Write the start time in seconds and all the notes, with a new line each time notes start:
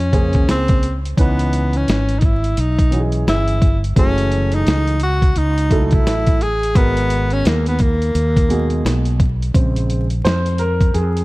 Already playing: F2 C#4
0.00 closed hi-hat
0.12 C#3 A#3 G#4 C5, kick, closed hi-hat
0.33 kick, closed hi-hat
0.48 C#2 C4, snare, closed hi-hat
0.68 kick, closed hi-hat
0.83 closed hi-hat
1.05 closed hi-hat
1.17 C#2 E3 B3 C#4 D#4 B4, kick, closed hi-hat
1.39 closed hi-hat
1.53 closed hi-hat
1.73 C#4, closed hi-hat
1.88 G#1, snare, closed hi-hat
2.09 closed hi-hat
2.19 D#4, kick, closed hi-hat
2.25 E4
2.44 closed hi-hat
2.57 B1 D#4, closed hi-hat
2.79 kick, closed hi-hat
2.91 E3 C#4 F#4 D#5, closed hi-hat
2.99 G#4
3.12 closed hi-hat
3.27 G1 E4, snare, closed hi-hat
3.48 closed hi-hat
3.62 kick, closed hi-hat
3.84 closed hi-hat
3.96 F#1 E3 F#3 A3 C#4 G#4, kick, closed hi-hat
4.18 closed hi-hat
4.32 closed hi-hat
4.52 D#4, closed hi-hat
4.67 C#2, snare, closed hi-hat
4.87 closed hi-hat
5.00 F#4, closed hi-hat
5.22 kick, closed hi-hat
5.36 C#2 D#4, closed hi-hat
5.58 closed hi-hat
5.70 F#3 A3 E4 A4, kick, closed hi-hat
5.85 D#4
5.91 E4, kick, closed hi-hat
6.06 A1, snare, closed hi-hat
6.27 kick, closed hi-hat
6.41 G#4, closed hi-hat
6.63 closed hi-hat
6.75 G#1 G#3 B3 F#4 A#4, kick, closed hi-hat
6.97 closed hi-hat
7.10 closed hi-hat
7.30 C#4, closed hi-hat
7.45 D#2 A#3, snare, closed hi-hat
7.66 B3, closed hi-hat
7.79 A#3, kick, closed hi-hat
8.02 closed hi-hat
8.15 D#2, closed hi-hat
8.36 kick, closed hi-hat
8.49 B2 G#3 F#4 G#4, closed hi-hat
8.70 closed hi-hat
8.85 B1, snare, closed hi-hat
9.05 closed hi-hat
9.20 kick, closed hi-hat
9.42 closed hi-hat
9.54 A#1 C#3 G#3 C4, kick, closed hi-hat
9.76 closed hi-hat
9.90 closed hi-hat
10.10 closed hi-hat
10.24 F2 C5, snare, closed hi-hat
10.46 closed hi-hat
10.58 A#4, closed hi-hat
10.81 kick, closed hi-hat
10.94 F2 G#4, closed hi-hat
11.17 closed hi-hat